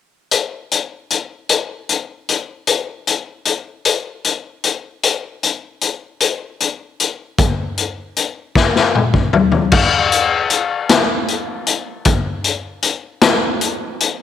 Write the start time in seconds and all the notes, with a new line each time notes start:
0.31 closed hi-hat
0.71 closed hi-hat
1.10 closed hi-hat
1.49 closed hi-hat
1.89 closed hi-hat
2.29 closed hi-hat
2.67 closed hi-hat
3.07 closed hi-hat
3.45 closed hi-hat
3.85 closed hi-hat
4.24 closed hi-hat
4.64 closed hi-hat
5.03 closed hi-hat
5.43 closed hi-hat
5.81 closed hi-hat
6.20 closed hi-hat
6.60 closed hi-hat
7.00 closed hi-hat
7.38 kick, closed hi-hat
7.77 closed hi-hat
8.16 closed hi-hat
8.55 kick, snare
8.76 snare
8.95 mid tom
9.14 kick
9.33 floor tom
9.52 floor tom
9.72 kick, crash
10.12 closed hi-hat
10.50 closed hi-hat
10.89 snare, closed hi-hat
11.28 closed hi-hat
11.67 closed hi-hat
12.05 kick, closed hi-hat
12.44 closed hi-hat
12.82 closed hi-hat
13.21 snare, closed hi-hat
13.61 closed hi-hat
14.00 closed hi-hat